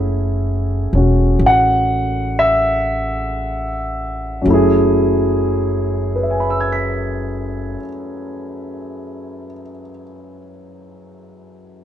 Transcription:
Already playing: F#1 A3 C#4 E4 G#4
0.93 E1 C#4
0.97 F#4
1.39 A1
1.46 F#5
2.39 E5
4.42 F#1 F#2 F#3
4.48 A3 E4
4.54 G#4
6.16 B4
6.23 E5
6.31 G#5
6.40 B5
6.50 E6
6.60 G#6
6.72 B6

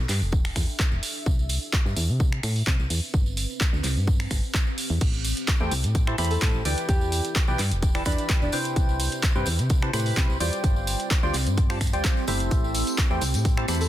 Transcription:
Already playing: D4 E5
0.09 G2 G4, clap, open hi-hat, tambourine
0.21 E1, tambourine
0.32 kick, tambourine
0.45 finger snap, open hi-hat
0.56 E2, finger snap, kick, open hi-hat, tambourine
0.69 tambourine
0.79 kick, clap, tambourine
0.91 E1, tambourine
1.03 C4, open hi-hat, tambourine
1.16 tambourine
1.26 C2, kick, tambourine
1.39 tambourine
1.49 B4, open hi-hat, tambourine
1.62 tambourine
1.73 kick, clap, tambourine
1.86 G2, tambourine
1.97 E2, open hi-hat, tambourine
2.09 C3, tambourine
2.20 kick, tambourine
2.32 finger snap
2.43 A2, finger snap, open hi-hat, tambourine
2.56 open hi-hat, tambourine
2.67 C3, kick, clap, tambourine
2.79 C2, tambourine
2.90 E2, open hi-hat, tambourine
3.03 tambourine
3.14 G1, kick, tambourine
3.26 tambourine
3.37 open hi-hat, tambourine
3.44 G4
3.50 tambourine
3.61 kick, clap, tambourine
3.73 D2, tambourine
3.84 C2, clap, open hi-hat, tambourine
3.96 G2, tambourine
4.07 kick, tambourine
4.20 finger snap, open hi-hat, tambourine
4.31 G1, finger snap, kick, open hi-hat, tambourine
4.43 tambourine
4.54 kick, clap, tambourine
4.67 tambourine
4.78 open hi-hat, tambourine
4.90 E2, tambourine
5.01 A1, kick, closed hi-hat, tambourine, crash
5.13 tambourine
5.25 open hi-hat, tambourine
5.35 A4, closed hi-hat, tambourine
5.48 kick, clap, closed hi-hat, tambourine
5.60 E2 A3 E4 G4 A4 C5 G5, tambourine
5.71 C2, open hi-hat, tambourine
5.84 A2 G5, closed hi-hat, tambourine
5.95 kick, closed hi-hat, tambourine
6.07 A3 E4 G4 A4 C5 A5, finger snap
6.18 E2 A3 E4 G4 A4 C5 B5, finger snap, open hi-hat, tambourine
6.25 closed hi-hat
6.30 A4, open hi-hat, tambourine
6.42 A2, kick, clap, closed hi-hat, tambourine
6.54 A1, tambourine
6.65 D2 E3 E4 G4 B4 D5 G5, open hi-hat, tambourine
6.78 closed hi-hat, tambourine
6.89 E2 D4 G4, kick, closed hi-hat, tambourine
7.01 tambourine
7.12 open hi-hat, tambourine
7.25 closed hi-hat, tambourine
7.36 G4 E5, kick, clap, closed hi-hat, tambourine
7.47 B1 E3 E4 G4 B4 D5 G5, tambourine
7.59 G2, clap, open hi-hat, tambourine
7.71 E1, closed hi-hat, tambourine
7.83 kick, closed hi-hat, tambourine
7.95 E3 E4 G4 B4 D5 A5, finger snap, open hi-hat
8.05 E2 E3 D4 E4 G4 B4 D5 B5, finger snap, kick, open hi-hat, tambourine
8.12 closed hi-hat
8.18 closed hi-hat, tambourine
8.29 kick, clap, closed hi-hat, tambourine
8.42 E1 D4, tambourine
8.52 C3 C4 E4 G4 B4 C5 G5, open hi-hat, tambourine
8.65 closed hi-hat, tambourine
8.76 C2, kick, closed hi-hat, tambourine
8.89 tambourine
9.00 open hi-hat, tambourine
9.12 B5, closed hi-hat, tambourine
9.23 kick, clap, closed hi-hat, tambourine
9.35 G2 C3 E4 G4 B4 C5 G5, tambourine
9.46 E2, open hi-hat, tambourine
9.59 C3, closed hi-hat, tambourine
9.69 kick, closed hi-hat, tambourine
9.82 C3 E4 G4 B4 C5 A5, finger snap
9.93 A2 C3 E4 G4 B4 C5 B5, finger snap, open hi-hat, tambourine
10.00 closed hi-hat
10.06 open hi-hat, tambourine
10.17 C3, kick, clap, closed hi-hat, tambourine
10.29 C2, tambourine
10.40 E2 G3 F4 G4 C5 D5 G5, open hi-hat, tambourine
10.53 closed hi-hat, tambourine
10.64 G1, kick, closed hi-hat, tambourine
10.76 tambourine
10.87 open hi-hat, tambourine
11.00 closed hi-hat
11.11 kick, clap, closed hi-hat, tambourine
11.19 D2 G3 F4 G4 C5 D5 G5, tambourine
11.34 C2, clap, open hi-hat, tambourine
11.46 G2, closed hi-hat, tambourine
11.58 kick, closed hi-hat, tambourine
11.70 G3 F4 G4 C5 D5 A5, finger snap, open hi-hat
11.81 finger snap, kick, open hi-hat, tambourine
11.87 closed hi-hat
11.93 D2 G3 F4 G4 C5 D5 G5, closed hi-hat, tambourine
12.04 kick, clap, closed hi-hat, tambourine
12.17 tambourine
12.27 G1 A3 E4 G4 A4 C5 E5, open hi-hat, tambourine
12.40 F1, closed hi-hat, tambourine
12.51 A1, kick, closed hi-hat, tambourine
12.64 tambourine
12.74 open hi-hat, tambourine
12.87 G5, closed hi-hat, tambourine
12.98 kick, clap, closed hi-hat, tambourine
13.10 E2 A3 E4 G4 A4 C5 G5, tambourine
13.18 C2 A4, open hi-hat, tambourine
13.22 tambourine
13.34 A2, closed hi-hat, tambourine
13.45 kick, closed hi-hat, tambourine
13.57 A3 E4 G4 A4 C5 A5, finger snap
13.68 E2 A3 E4 G4 A4 C5 B5, finger snap, open hi-hat, tambourine
13.75 closed hi-hat
13.81 A4, open hi-hat, tambourine

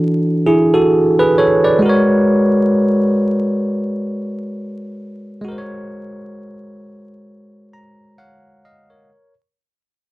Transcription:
Already playing: E3 D4 F#4 A4
0.46 E4 G#4
0.74 F#4 A4
1.19 G#4 B4
1.38 A4 C#5
1.64 B4 D5
1.79 G#3 F#4
1.86 A#4 C#5
5.41 G#3 F#4
5.48 A#4 C5
5.58 C#5
7.73 A#5
8.18 C#5 F5 F#5
8.65 D#5 F5
8.90 A#4 C#5

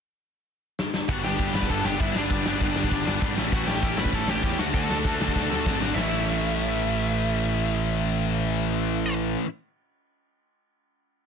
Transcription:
0.79 snare
0.94 snare
1.08 G1 G2 D3 G3 B3 D4 F#4 F#5, kick, ride
1.24 G1 G2 D3 G3 B3 D4 G4 G5, snare
1.39 G1 G2 D3 G3 B3 D4, kick, ride
1.53 G1 G2 D3 G3 B3 D4 B4 B5, snare
1.62 kick
1.69 G1 G2 D3 G3 B3 D4 A4 A5, kick, ride
1.84 G1 G2 D3 G3 B3 D4 G4 G5, snare
1.99 G1 G2 D3 G3 B3 D4 E4 E5, kick, ride
2.15 G1 G2 D3 G3 B3 D4 D5, snare
2.30 G1 G2 D3 G3 B3 D4, kick, ride
2.46 G1 G2 D3 G3 B3 D4, snare
2.60 G1 G2 D3 G3 B3 D4, kick, ride
2.76 G1 G2 D3 G3 B3 D4, snare
2.84 kick
2.91 G1 G2 D3 G3 B3 D4, kick, ride
3.06 G1 G2 D3 G3 B3 D4, snare
3.21 G#1 G2 D3 G3 B3 D4, kick, ride
3.36 A1 A2 E3 A3 C#4 E4, snare
3.51 A1 A2 E3 A3 C#4 E4 F#4 F#5, kick, ride
3.67 A1 A2 E3 A3 C#4 E4 G4 G5, snare
3.82 A1 A2 E3 A3 C#4 E4, kick, ride
3.97 A1 A2 E3 A3 C#4 E4 B4 B5, snare
4.05 kick
4.12 A1 A2 E3 A3 C#4 E4 A4 A5, kick, ride
4.27 A1 A2 E3 A3 C#4 E4 G4 G5, snare
4.42 E2 A2 E3 A3 C#4 E4, kick, ride
4.58 D2 D3 A3 D4 F#4 F#5, snare
4.73 D2 D3 A3 D4 F#4 A4 A5, kick, ride
4.88 D2 D3 A3 D4 F#4, snare
5.04 D2 D3 A3 D4 F#4, kick, ride
5.19 D2 D3 A3 D4 F#4, snare
5.28 kick
5.34 D2 D3 A3 D4 F#4, kick, snare
5.49 D2 D3 A3 D4 F#4, snare
5.65 G#1 D3 A3 D4 F#4, kick, snare
5.80 D3 A3 D4 F#4, snare
5.95 A1 A2 E3 A3 C#4 E5, snare, crash
5.99 E4

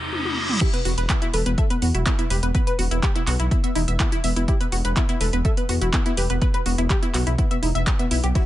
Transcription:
Already playing: E2 C3 F#3 A3 F#4, reverse cymbal, riser
0.13 high tom
0.25 high tom
0.49 mid tom
0.61 E4 G4 E5, kick, cross-stick, closed hi-hat, crash
0.73 B3 B4 B5, closed hi-hat
0.85 E1 B3 F#4 F#5, open hi-hat
0.97 E1 B4 B5, closed hi-hat
1.09 E4 E5, kick, clap, closed hi-hat
1.22 B3 E4 E5, closed hi-hat
1.33 E1 A4 B4 B5, open hi-hat
1.46 E1 B3 B4 B5, cross-stick, closed hi-hat
1.58 A4 E5 E6, kick, closed hi-hat
1.70 B3 B4 B5, closed hi-hat
1.82 E2 B3 F#4 F#5, open hi-hat
1.94 E1 E4 F#4 E5, closed hi-hat
2.06 B3 E4 E5, kick, clap, closed hi-hat
2.19 B3 E4 E5, closed hi-hat
2.30 E1 G4 B4 B5, cross-stick, open hi-hat
2.43 E1 B3 B4 B5, closed hi-hat
2.54 B3 B4 B5, kick, closed hi-hat
2.67 B4 B5, closed hi-hat
2.79 E1 B3 F#4 F#5, open hi-hat
2.91 E1 B3 E4 E5, closed hi-hat
3.03 G4 G5, kick, clap, closed hi-hat
3.15 B3 E4 E5, cross-stick, closed hi-hat
3.27 B1 B3 F#4 F#5, clap, open hi-hat
3.40 B1 E4 E5, closed hi-hat
3.51 B3 E4 E5, kick, closed hi-hat
3.64 B3 E5 E6, closed hi-hat
3.75 E1 D#4 E4 E5, open hi-hat
3.88 E1 B3 E5 E6, closed hi-hat
4.00 B3 E4 E5, kick, cross-stick, clap, closed hi-hat
4.12 E4 E5, closed hi-hat
4.24 E1 B3 E5 E6, open hi-hat
4.36 E1 B3 E4 E5, closed hi-hat
4.48 E4 G4 E5, kick, closed hi-hat
4.61 B3 B4 B5, closed hi-hat
4.72 E1 B3 F#4 F#5, open hi-hat
4.85 E1 B4 B5, cross-stick, closed hi-hat
4.96 B3 E4 E5, kick, clap, closed hi-hat
5.09 B3 E4 E5, closed hi-hat
5.21 E1 A4 B4 B5, open hi-hat
5.33 E1 B3 B4 B5, closed hi-hat
5.45 A4 E5 E6, kick, closed hi-hat
5.57 B3 B4 B5, closed hi-hat
5.69 E2 B3 F#4 F#5, cross-stick, open hi-hat
5.81 E1 E4 F#4 E5, closed hi-hat
5.93 B3 E4 E5, kick, clap, closed hi-hat
6.06 B3 E4 E5, closed hi-hat
6.17 E1 G4 B4 B5, open hi-hat
6.30 E1 B3 B4 B5, closed hi-hat
6.41 B3 B4 B5, kick, closed hi-hat
6.54 B4 B5, cross-stick, closed hi-hat
6.66 E1 B3 F#4 F#5, open hi-hat
6.78 E1 B3 E4 E5, closed hi-hat
6.90 G4 G5, kick, clap, closed hi-hat
7.02 B3 E4 E5, closed hi-hat
7.14 B1 B3 F#4 F#5, clap, open hi-hat
7.26 B1 E4 E5, closed hi-hat
7.38 B3 E4 E5, kick, cross-stick, closed hi-hat
7.51 B3 E5 E6, closed hi-hat
7.62 E1 D#4 E4 E5, open hi-hat
7.75 E1 B3 E5 E6, closed hi-hat
7.87 B3 G4 G5, kick, clap, closed hi-hat
7.99 B3 E5 E6, closed hi-hat
8.11 B1 B3 E4 E5, open hi-hat
8.23 B1 B3 G4 G5, cross-stick, closed hi-hat
8.35 C3 F#3 A3 E4 F#4 E5, kick, cross-stick, closed hi-hat, ride

